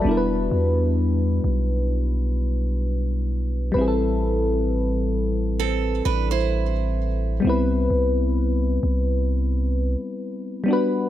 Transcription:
Already playing: fm electric piano F#4 B4
0.02 808-style bass E1, fm electric piano G3 B3
0.06 fm electric piano D4 E4
0.11 fm electric piano A#4
0.17 fm electric piano B4
0.51 808-style bass E2
1.44 808-style bass B1
3.72 808-style bass A1, fm electric piano G3 B4
3.76 fm electric piano C4 E4
3.81 fm electric piano G#4
3.88 fm electric piano A4
5.60 steel-string acoustic guitar C4 A4
6.05 808-style bass A1, steel-string acoustic guitar D4 B4
6.31 steel-string acoustic guitar E4 C5
7.40 fm electric piano G3 B3
7.45 808-style bass C2, fm electric piano C4 E4
7.49 fm electric piano B4
7.90 808-style bass C2
8.83 808-style bass C2
10.64 fm electric piano G3 B3
10.68 fm electric piano D4 F#4
10.73 fm electric piano B4

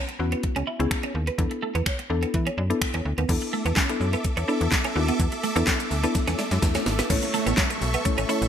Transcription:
0.09 muted clean electric guitar stroke, closed hi-hat
0.19 fm bass E2, synth pluck B3 C#4 E4 F#4
0.32 clean electric guitar B3, closed hi-hat
0.43 muted clean electric guitar stroke, kick, closed hi-hat
0.56 fm bass C#2, clean electric guitar C#4, closed hi-hat
0.67 clean electric guitar E4
0.79 fm bass C#2, synth pluck B3 C#4 E4 G#4, closed hi-hat
0.91 finger snap, kick, closed hi-hat
1.03 clean electric guitar C#4, closed hi-hat
1.15 fm bass D#2, muted clean electric guitar stroke
1.27 clean electric guitar B3, closed hi-hat
1.38 fm bass E2, synth pluck B3 D4 E4 A4, kick, closed hi-hat
1.51 muted clean electric guitar stroke, closed hi-hat
1.63 clean electric guitar A3
1.75 fm bass E2, clean electric guitar B3, closed hi-hat
1.86 clean electric guitar C#4, finger snap, kick, closed hi-hat
1.99 muted clean electric guitar stroke, closed hi-hat
2.10 fm bass E2, synth pluck B3 D4 E4 A4
2.23 clean electric guitar B3, closed hi-hat
2.34 fm bass E3, muted clean electric guitar stroke, kick, closed hi-hat
2.47 clean electric guitar C#4, closed hi-hat
2.58 fm bass F#2, clean electric guitar D4
2.70 synth pluck B3 D4 E4 A4, closed hi-hat
2.82 finger snap, kick, closed hi-hat
2.94 fm bass E2, clean electric guitar C#4, closed hi-hat
3.05 fm bass D2, muted clean electric guitar stroke
3.18 fm bass D#2, clean electric guitar B3, closed hi-hat
3.29 fm bass E2, synth pluck B3 D4 E4 A4, supersaw synth A4 E5 D6, kick, closed hi-hat, crash, shaker
3.41 muted clean electric guitar stroke, closed hi-hat, shaker
3.53 clean electric guitar A3, shaker
3.65 fm bass E2, clean electric guitar B3, closed hi-hat, shaker
3.76 clean electric guitar C#4, kick, snare, clap, closed hi-hat, shaker
3.89 synth pluck B3 D4 E4 A4, muted clean electric guitar stroke, closed hi-hat, shaker
4.00 fm bass F#2, shaker
4.13 clean electric guitar B3, closed hi-hat, shaker
4.24 muted clean electric guitar stroke, kick, closed hi-hat, shaker
4.37 fm bass E2, clean electric guitar C#4, closed hi-hat, shaker
4.48 synth pluck B3 D4 E4 A4, clean electric guitar D4, shaker
4.61 fm bass E2, closed hi-hat, shaker
4.71 kick, snare, clap, closed hi-hat, shaker
4.84 clean electric guitar C#4, closed hi-hat, shaker
4.95 fm bass D#2, synth pluck B3 D4 E4 F#4, muted clean electric guitar stroke
5.08 clean electric guitar B3, closed hi-hat, shaker
5.19 fm bass E2, kick, closed hi-hat, swell, shaker
5.32 muted clean electric guitar stroke, closed hi-hat, shaker
5.43 clean electric guitar A3, open hi-hat, shaker
5.56 fm bass E2, synth pluck B3 D4 E4 A4, clean electric guitar B3, closed hi-hat, shaker
5.67 clean electric guitar C#4, kick, snare, clap, closed hi-hat, shaker
5.79 muted clean electric guitar stroke, closed hi-hat, shaker
5.91 fm bass D2, open hi-hat, shaker
6.03 synth pluck B3 D4 E4 A4, clean electric guitar B3, closed hi-hat, shaker
6.14 muted clean electric guitar stroke, kick, snare, closed hi-hat, shaker
6.27 fm bass E2, clean electric guitar C#4, snare, closed hi-hat, shaker
6.39 clean electric guitar D4, snare, open hi-hat, shaker
6.51 fm bass F#2, snare, closed hi-hat, shaker
6.62 fm bass E2, synth pluck B3 D4 E4 A4, kick, snare, closed hi-hat, shaker
6.75 clean electric guitar C#4, snare, closed hi-hat, shaker
6.86 fm bass G#1, muted clean electric guitar stroke, snare, open hi-hat, shaker
6.99 clean electric guitar B3, snare, closed hi-hat, shaker
7.10 fm bass A1, synth pluck A3 C#4 E4 A4 C#5, supersaw synth A4 E5 C#6, kick, closed hi-hat, crash, downlifter, shaker
7.22 muted clean electric guitar stroke, closed hi-hat, shaker
7.34 clean electric guitar A3, open hi-hat, shaker
7.46 fm bass A1, clean electric guitar B3, closed hi-hat, shaker
7.57 clean electric guitar C#4, kick, snare, clap, closed hi-hat, shaker
7.70 muted clean electric guitar stroke, closed hi-hat, shaker
7.82 fm bass B1, open hi-hat, shaker
7.94 clean electric guitar B3, closed hi-hat, shaker
8.05 synth pluck A3 C#4 E4 A4 C#5, muted clean electric guitar stroke, kick, closed hi-hat, shaker
8.18 fm bass A1, clean electric guitar C#4, closed hi-hat, shaker
8.29 synth pluck A3 C#4 E4 A4 C#5, clean electric guitar E4, open hi-hat, shaker
8.42 fm bass A1, closed hi-hat, shaker

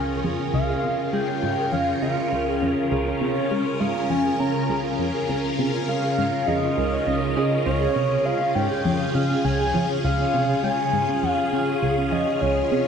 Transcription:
Already playing: synth arpeggio sound C#2, string machine C#3 C#4 F4 A#4, harp C#4 G#4, analog synth lead G#5
0.24 synth arpeggio sound F2, harp G#4
0.39 harp C#4
0.54 synth arpeggio sound C#2, analog synth lead F5
0.69 harp G#4
0.83 synth arpeggio sound C3, harp C#4
1.13 synth arpeggio sound G#3, harp G#4, analog synth lead G5
1.28 harp C#4
1.43 synth arpeggio sound G#2
1.58 harp G#4
1.72 synth arpeggio sound F2, harp C#4, analog synth lead F5
2.02 synth arpeggio sound C#3, harp G#4, analog synth lead F5
2.17 harp C#4
2.32 synth arpeggio sound C#2
2.47 harp G#4
2.62 synth arpeggio sound F2, harp C#4
2.91 synth arpeggio sound C#2, harp G#4, analog synth lead C#5
3.06 harp C#4
3.21 synth arpeggio sound C3
3.36 harp G#4
3.51 synth arpeggio sound G#3, harp C#4
3.80 synth arpeggio sound G#2, harp G#4, analog synth lead F5
3.95 harp C#4
4.10 synth arpeggio sound F2, analog synth lead G#5
4.25 harp G#4
4.40 synth arpeggio sound C#3, harp C#4, analog synth lead A#5
4.70 synth arpeggio sound C#2, harp G#4
4.85 harp C#4
4.99 synth arpeggio sound F2
5.14 harp G#4
5.29 synth arpeggio sound C#2, harp C#4
5.59 synth arpeggio sound C3, harp G#4
5.74 harp C#4
5.88 synth arpeggio sound G#3, analog synth lead F5
6.03 harp G#4
6.18 synth arpeggio sound G#2, harp C#4
6.47 synth arpeggio sound F2, harp G#4, analog synth lead D#5
6.62 harp C#4
6.77 synth arpeggio sound C#2
6.92 harp C#5
7.07 synth arpeggio sound C#2, harp C#4, analog synth lead D#5
7.37 synth arpeggio sound C#3, harp G#4
7.52 harp F4
7.66 synth arpeggio sound C#2, analog synth lead C#5
7.81 harp G#4
7.96 synth arpeggio sound C3, harp C#4
8.25 synth arpeggio sound G#3, harp G#4, analog synth lead F5
8.31 string machine G#4
8.41 harp C#4
8.55 synth arpeggio sound G#2, analog synth lead G5
8.71 harp G#4
8.85 synth arpeggio sound F2, harp C#4
9.14 synth arpeggio sound C#3, harp G#4, analog synth lead F5
9.30 harp C#4
9.44 synth arpeggio sound C#2, analog synth lead G#5
9.60 harp G#4
9.74 synth arpeggio sound F2, harp C#4
10.04 synth arpeggio sound C#2, harp G#4, analog synth lead F5
10.19 harp C#4
10.34 synth arpeggio sound C3
10.49 harp G#4
10.64 synth arpeggio sound G#3, harp C#4, analog synth lead G#5
10.93 synth arpeggio sound G#2, harp G#4
11.08 harp C#4
11.23 synth arpeggio sound F2, analog synth lead F5
11.38 harp G#4
11.53 synth arpeggio sound C#3, harp C#4
11.82 synth arpeggio sound C#2, harp G#4
11.97 harp C#4
12.12 synth arpeggio sound F2, analog synth lead D#5
12.27 harp G#4
12.42 synth arpeggio sound C#2, harp C#4, analog synth lead C#5
12.72 synth arpeggio sound C3, harp G#4

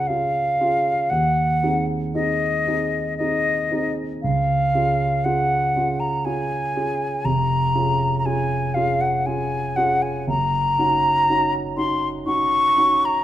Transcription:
Already playing: grand piano C#4 F4 G#4
0.07 grand piano C#4 F4 G#4, flute F5
0.61 grand piano C#4 F4 G#4
1.09 grand piano D#2, flute F#5
1.63 grand piano C4 D#4 G#4
2.15 grand piano C4 D#4 G#4, flute D#5
2.67 grand piano C4 D#4 G#4
3.17 grand piano C4 D#4 G#4, flute D#5
3.71 grand piano C4 D#4 G#4
4.22 grand piano C#2, flute F5
4.75 grand piano C#4 F4 G#4
5.24 grand piano C#4 F4 G#4, flute F#5
5.76 grand piano C#4 F4 G#4
6.00 flute A#5
6.25 grand piano C#4 F4 G#4, flute G#5
6.76 grand piano C#4 F4 G#4
7.25 grand piano F1, flute A#5
7.75 grand piano C#4 F4 G#4
8.19 flute A#5
8.25 grand piano C#4 F4 G#4, flute G#5
8.74 grand piano C#4 F4 G#4, flute F5
9.01 flute F#5
9.26 grand piano C#4 F4 G#4, flute G#5
9.76 grand piano C#4 F4 G#4, flute F#5
10.02 flute G#5
10.27 grand piano F#1, flute A#5
10.78 grand piano C#4 D#4 F#4
11.29 grand piano C#4 D#4 F#4
11.77 grand piano C#4 D#4 F#4, flute C6
12.26 grand piano C#4 D#4 F#4, flute C#6
12.77 grand piano C#4 D#4 F#4
13.05 flute A#5

